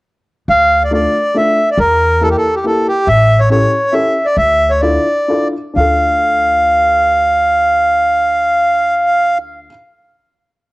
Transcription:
0.48 D2 F5
0.84 D5
0.91 A3 D4 F4 A4 D5
1.34 A3 D4 F4 A4 E5
1.71 D5
1.77 E2 A#4
2.21 A#3 E4 G4 A4 A#4
2.31 G4
2.37 A4
2.55 G4
2.64 A#3 E4 G4 A4 A#4
2.88 G4
3.07 A1 E5
3.39 C#5
3.50 C#4 E4 G4 A4 C#5
3.92 C#4 E4 G4 A4 E5
4.25 D5
4.37 D2 E5
4.70 C#5
4.81 D4 E4 F4 A4 D5
5.28 D4 E4 F4 A4
5.74 D2 D4 F5
5.78 F4 A4

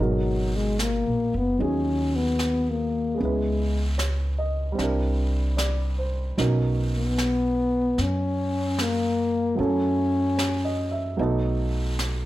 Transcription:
0.00 G#1 B2 F#3 G#3 D#4 F#4 A#4
0.56 G#3
0.79 A#3, snare, hi-hat pedal
1.06 A#1
1.34 F#1 B3
1.58 D#2 F#3 C#4 D#4 G#4, brush sweep
2.16 B3
2.39 snare, hi-hat pedal
2.70 A#3
3.14 G#3 B3
3.19 C#2 G#3 C#4 E4, brush sweep
3.25 B4
3.98 C#5, snare, hi-hat pedal
4.39 D#5
4.72 G3 C4
4.78 C2 D4 E4, brush sweep, snare
4.84 A#4
5.57 D5, snare, hi-hat pedal
5.98 C5
6.37 B1 B2 F#3 C#4 D#4 A#4, brush sweep, snare
6.98 B3
7.18 snare, hi-hat pedal
7.98 F#2 C#4, brush sweep, snare
8.79 A#3, snare, hi-hat pedal
9.55 F#2 F#3 A3 C#4 E4, brush sweep
9.60 C#4 A4
10.37 C#5, snare, hi-hat pedal
10.65 D#5
10.91 E5
11.17 B1 F#3 A3 B3 D#4, brush sweep
11.22 A4
11.99 snare, hi-hat pedal

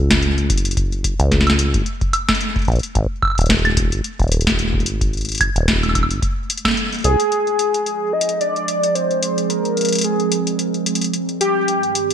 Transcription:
Already playing: C#2
0.10 kick, snare, closed hi-hat
0.23 closed hi-hat
0.38 closed hi-hat
0.50 F#1, kick, closed hi-hat
0.58 closed hi-hat
0.65 closed hi-hat
0.71 closed hi-hat
0.77 kick, closed hi-hat
0.92 closed hi-hat
1.04 kick, closed hi-hat
1.20 C#2, closed hi-hat
1.32 kick, snare, closed hi-hat
1.41 snare
1.47 snare, closed hi-hat, high woodblock
1.59 closed hi-hat
1.74 F#1, kick, closed hi-hat
1.86 closed hi-hat
2.01 kick, closed hi-hat
2.13 closed hi-hat, high woodblock
2.29 kick, snare, high woodblock
2.35 closed hi-hat
2.41 closed hi-hat
2.56 kick, closed hi-hat
2.59 closed hi-hat
2.62 closed hi-hat
2.65 closed hi-hat
2.68 A#1, closed hi-hat
2.72 closed hi-hat
2.76 closed hi-hat
2.79 closed hi-hat
2.83 closed hi-hat
2.95 G#1, kick, closed hi-hat
3.22 kick, high woodblock
3.25 high woodblock
3.28 high woodblock
3.30 high woodblock
3.35 D#1, closed hi-hat, high woodblock
3.41 closed hi-hat
3.46 kick, closed hi-hat
3.50 snare, closed hi-hat
3.59 closed hi-hat
3.65 closed hi-hat, high woodblock
3.77 kick, closed hi-hat
3.92 G#1, closed hi-hat
4.04 closed hi-hat
4.20 D#1, kick, closed hi-hat
4.23 closed hi-hat
4.28 closed hi-hat
4.32 closed hi-hat
4.37 closed hi-hat
4.41 closed hi-hat
4.47 kick, snare, closed hi-hat
4.50 closed hi-hat
4.59 closed hi-hat
4.74 kick
4.80 closed hi-hat
4.86 G#1, closed hi-hat
5.01 kick, closed hi-hat
5.13 closed hi-hat
5.17 closed hi-hat
5.21 closed hi-hat
5.25 closed hi-hat
5.29 closed hi-hat
5.32 closed hi-hat
5.35 closed hi-hat
5.38 kick, closed hi-hat
5.41 closed hi-hat, high woodblock
5.56 D#1, closed hi-hat
5.68 kick, snare, closed hi-hat
5.83 closed hi-hat, high woodblock
5.89 high woodblock
5.95 kick, closed hi-hat, high woodblock
6.03 high woodblock
6.10 G#1, closed hi-hat
6.22 kick, closed hi-hat
6.50 closed hi-hat
6.58 closed hi-hat
6.65 kick, snare, high woodblock
6.68 snare
6.71 snare
6.74 snare, closed hi-hat
6.92 closed hi-hat
6.94 closed hi-hat
6.98 closed hi-hat
7.00 closed hi-hat
7.02 C2 G#4, closed hi-hat
7.04 closed hi-hat
7.20 closed hi-hat
7.31 F3, closed hi-hat
7.37 C4
7.43 G#3, closed hi-hat
7.51 C5
7.59 closed hi-hat
7.74 closed hi-hat
7.86 closed hi-hat
8.09 G#4
8.13 D#5
8.21 closed hi-hat
8.29 closed hi-hat
8.40 D5, closed hi-hat
8.56 closed hi-hat
8.68 closed hi-hat
8.83 closed hi-hat
8.95 C5, closed hi-hat
9.11 closed hi-hat
9.23 closed hi-hat
9.38 closed hi-hat
9.50 A#4, closed hi-hat
9.65 closed hi-hat
9.77 closed hi-hat
9.81 closed hi-hat
9.85 closed hi-hat
9.89 closed hi-hat
9.92 closed hi-hat
9.95 closed hi-hat
9.98 closed hi-hat
10.01 G#4, closed hi-hat
10.04 closed hi-hat
10.20 closed hi-hat
10.32 closed hi-hat
10.47 closed hi-hat
10.59 closed hi-hat
10.74 closed hi-hat
10.86 closed hi-hat
10.95 closed hi-hat
11.01 closed hi-hat
11.04 closed hi-hat
11.13 closed hi-hat
11.29 closed hi-hat
11.41 G4, closed hi-hat
11.68 G2, closed hi-hat
11.78 D#3
11.83 closed hi-hat
11.95 G3, closed hi-hat
12.10 A#3, closed hi-hat

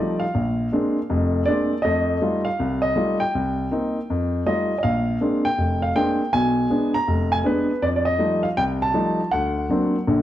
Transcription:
Already playing: D5
0.00 F3 G3 A3 D#4
0.20 F5
0.35 A#1
0.72 G#3 A#3 C4 D4
1.10 F1 F2
1.45 G#3 A#3 C4 D4 D5
1.82 F2 A3 D#5
2.22 G3 A3 D#4 F4
2.45 F5
2.60 C2
2.82 D#5
2.96 G3 A3 D#4 F4
3.20 G5
3.35 C2
3.71 A#3 C4 D#4
4.10 F2
4.46 G3 A3 D#4 F4 D#5
4.79 D#5
4.83 A#1 F5
5.21 G#3 A#3 C4 D4
5.45 G5
5.58 F1
5.82 F5
5.95 G#3 A#3 C4 D4 G5
6.33 B1 B2 G#5
6.70 G#3 B3 D4
6.94 A#5
7.08 F1
7.32 G#5
7.44 G#3 B3 D4 B4
7.82 F2 D5
7.96 D5
8.05 D#5
8.19 F3 G3 A3 D#4
8.43 F5
8.57 C2 G5
8.82 A5
8.94 F3 G3 A3 D#4
9.31 D2 F#5
9.69 F#3 A#3 C4 D4
10.07 A#1 D3

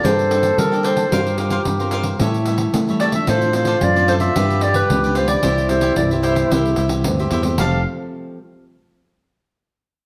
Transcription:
Already playing: A#3 D4 A4
0.03 G2 G3 A4 A#4 C5 D5 G5 A5, pandeiro
0.19 pandeiro
0.30 A#3 D4 A4 D5 G5 A5, pandeiro
0.43 pandeiro
0.57 D3 G3 A#4, pandeiro
0.71 A#3 D4 A4 D5 G5 A5, pandeiro
0.83 A#4 C5 D5 G5 A5, pandeiro
0.96 D5 G5 A5, pandeiro
1.11 G2 G3 C4 F4 G4 A#4 C5 F5, pandeiro
1.26 pandeiro
1.37 C4 F4 A#4 C5 F5, pandeiro
1.50 F4 A#4 C5 F5, pandeiro
1.65 G2 G3, pandeiro
1.79 C4 F4 A#4 C5 F5, pandeiro
1.91 F4 A#4 C5 F5, pandeiro
2.03 A#4 C5 F5, pandeiro
2.19 A2 G3 C#4 E4 G4 A4 C#5 E5, pandeiro
2.34 pandeiro
2.45 G3 C#4 E4 G4 A4 C#5 E5, pandeiro
2.58 pandeiro
2.73 E3 A3, pandeiro
2.87 G3 C#4 E4 A4 C#5 E5, pandeiro
3.00 G4 A4 C#5 D5 E5, pandeiro
3.12 F3 C4 D4 A4 C#5 E5, pandeiro
3.27 A2 F4 A4 C5 D5, pandeiro
3.41 F3 C4 D4, pandeiro
3.53 F3 C4 D4 F4 A4 C5 D5, pandeiro
3.65 F4 A4 C5 D5, pandeiro
3.81 F#2 A2 D5, pandeiro
3.96 F3 C4 D4 A4 C5 D5, pandeiro
4.08 F4 A4 C5 D5, pandeiro
4.20 A4 C5 D5 E5, pandeiro
4.36 G2 F3 B3 D4 F4 G4 B4 D5, pandeiro
4.50 pandeiro
4.61 F4 G4 B4 D5, pandeiro
4.74 B4, pandeiro
4.90 C#2 F3 B3 D4, pandeiro
5.04 F3 B3 D4 G4 B4 D5, pandeiro
5.15 F3 D4 F4 G4 B4 C5 D5, pandeiro
5.28 G4 B4 D5, pandeiro
5.42 C2 C3 C4 E4 G4 C5 E5, pandeiro
5.58 pandeiro
5.69 C4 E4 G4 C5 E5, pandeiro
5.81 E4 G4 C5 E5, pandeiro
5.96 C2 G2 D5, pandeiro
6.11 C4 E4 G4 C5 E5, pandeiro
6.23 E4 G4 C5 E5, pandeiro
6.35 G4 C5 E5, pandeiro
6.51 C2 C3 C4 E4 G4 C5 E5, pandeiro
6.66 pandeiro
6.76 C2 C4 E4 G4 C5 E5, pandeiro
6.89 pandeiro
7.04 D2 G2 C4, pandeiro
7.19 C4 E4 G4 C5 E5, pandeiro
7.31 E2 E4 G4 C5 E5, pandeiro
7.43 A3 C4 G4 C5 E5, pandeiro
7.58 F1 F3 A3 C4 G4 A4 F5 A5, pandeiro

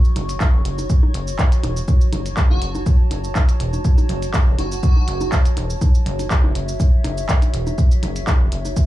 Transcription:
Already playing: F#4 C#5 C#6
0.05 shaker
0.16 F#1, closed hi-hat, low bongo, low conga
0.29 closed hi-hat, shaker
0.41 kick, clap, low bongo, shaker
0.54 F#1
0.65 F#1, closed hi-hat
0.78 low bongo, shaker
0.90 kick, shaker
1.03 low bongo
1.14 F#1, closed hi-hat
1.28 shaker
1.39 kick, clap, low bongo, shaker
1.52 closed hi-hat, shaker
1.63 E1, closed hi-hat, low bongo
1.77 shaker
1.88 kick, low bongo, shaker
2.01 shaker
2.13 F#1, closed hi-hat, low bongo, low conga
2.26 A5, closed hi-hat, shaker
2.37 kick, clap, shaker
2.50 F#1 F#4, low bongo
2.62 F#1, closed hi-hat
2.75 low bongo, shaker
2.86 kick, shaker
3.11 F#1, closed hi-hat, low bongo
3.24 shaker
3.36 kick, clap, low bongo, shaker
3.49 closed hi-hat, shaker
3.60 E1, closed hi-hat
3.73 low bongo, shaker
3.85 kick, shaker
3.98 low bongo, shaker
4.09 F#1, closed hi-hat, low conga
4.23 closed hi-hat, shaker
4.34 kick, clap, low bongo, shaker
4.47 F#1
4.59 F#1 F#4, closed hi-hat, low bongo
4.72 F#4, shaker
4.83 F#4, kick, shaker
4.96 low bongo
5.08 F#1, closed hi-hat
5.21 low bongo, shaker
5.32 kick, clap, shaker
5.46 closed hi-hat, shaker
5.57 E1, closed hi-hat, low bongo
5.70 shaker
5.81 kick, low bongo, shaker
5.95 shaker
6.06 F#1, closed hi-hat, low conga
6.19 E5, closed hi-hat, low bongo, shaker
6.31 kick, clap, shaker
6.44 F#1, low bongo
6.55 F#1, closed hi-hat
6.69 shaker
6.80 kick, low bongo, shaker
7.04 F#1, closed hi-hat, low bongo
7.18 shaker
7.29 kick, clap, shaker
7.42 closed hi-hat, low bongo, shaker
7.54 E1, closed hi-hat
7.67 low bongo, shaker
7.78 kick, shaker
7.91 shaker
8.03 F#1, closed hi-hat, low bongo, low conga
8.16 closed hi-hat, shaker
8.27 kick, clap, low bongo, shaker
8.41 F#1
8.52 F#1, closed hi-hat
8.65 low bongo, shaker
8.77 kick, shaker

